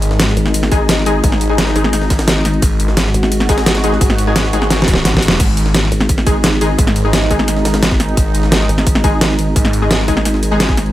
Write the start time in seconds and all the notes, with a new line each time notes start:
Already playing: G#1 D#3 G#3 D#4 G#4
0.02 closed hi-hat, ride
0.11 snare
0.20 snare, closed hi-hat, ride
0.28 snare
0.37 G#1, closed hi-hat, ride
0.46 snare
0.54 closed hi-hat, ride
0.63 snare
0.72 G#3 D#4 G#4, kick, closed hi-hat, ride
0.89 snare, closed hi-hat, ride
1.06 G#3 D#4 G#4, closed hi-hat, ride
1.24 G#1, kick, closed hi-hat, ride
1.32 snare
1.41 closed hi-hat, ride
1.50 G#3 D#4 G#4
1.58 snare, closed hi-hat, ride
1.67 snare
1.76 G#1 G#3 D#4 G#4, closed hi-hat, ride
1.84 snare
1.93 snare, closed hi-hat, ride
2.02 snare
2.10 kick, snare, closed hi-hat, ride
2.19 snare, ride
2.28 snare, closed hi-hat, ride
2.45 snare, closed hi-hat, ride
2.54 ride
2.62 G#1 F#4, kick, closed hi-hat, ride
2.80 closed hi-hat, ride
2.88 snare
2.97 snare, closed hi-hat, ride
3.06 snare
3.14 G#1, closed hi-hat, ride
3.23 snare
3.32 closed hi-hat, ride
3.40 snare
3.49 G#3 D#4 G#4, kick, snare, closed hi-hat, ride
3.58 snare, ride
3.66 snare, closed hi-hat, ride
3.75 snare, ride
3.84 G#3 D#4 G#4, closed hi-hat, ride
3.92 snare
4.01 G#1, kick, closed hi-hat, ride
4.10 snare
4.18 closed hi-hat, ride
4.27 G#3 D#4 G#4
4.36 snare, closed hi-hat, ride
4.44 snare
4.53 G#1 G#3 D#4 G#4, closed hi-hat, ride
4.62 snare
4.70 snare, closed hi-hat, ride
4.79 snare
4.82 snare
4.88 kick, closed hi-hat, ride
4.94 snare
4.96 snare
5.05 G#1, snare, closed hi-hat, ride
5.14 kick, snare
5.22 closed hi-hat, ride
5.28 snare, ride
5.40 G#1 D#3 G#3 D#4, kick, closed hi-hat, crash, ride
5.57 closed hi-hat, ride
5.66 snare
5.74 snare, closed hi-hat, ride
5.83 snare
5.92 G#1, closed hi-hat, ride
6.00 snare
6.09 kick, closed hi-hat, ride
6.18 snare
6.26 G#3 D#4 G#4, kick, closed hi-hat, ride
6.44 snare, closed hi-hat, ride
6.61 G#3 D#4 G#4, closed hi-hat, ride
6.78 G#1, kick, closed hi-hat, ride
6.87 snare
6.96 closed hi-hat, ride
7.05 G#3 D#4 G#4
7.13 snare, closed hi-hat, ride
7.22 snare
7.31 G#1 G#3 D#4 G#4, kick, closed hi-hat, ride
7.39 snare
7.48 snare, closed hi-hat, ride
7.57 snare
7.65 snare, closed hi-hat, ride
7.74 snare, ride
7.83 snare, closed hi-hat, ride
7.91 kick
8.00 snare, closed hi-hat, ride
8.09 ride
8.17 G#1, kick, closed hi-hat, ride
8.35 closed hi-hat, ride
8.43 snare
8.52 snare, closed hi-hat, ride
8.61 snare
8.69 G#1, closed hi-hat, ride
8.78 snare
8.87 kick, closed hi-hat, ride
8.95 snare
9.04 G#3 D#4 G#4, kick, closed hi-hat, ride
9.21 snare, closed hi-hat, ride
9.39 closed hi-hat, ride
9.56 G#1, kick, closed hi-hat, ride
9.65 snare
9.73 closed hi-hat, ride
9.82 G#3 D#4 G#4
9.91 snare, closed hi-hat, ride
9.99 snare
10.08 G#1 G#3 D#4 G#4, kick, closed hi-hat, ride
10.17 snare
10.25 snare, closed hi-hat, ride
10.34 snare
10.43 closed hi-hat, ride
10.51 G#3 D#4 G#4
10.60 snare, closed hi-hat, ride
10.69 kick
10.77 snare, closed hi-hat, ride
10.86 ride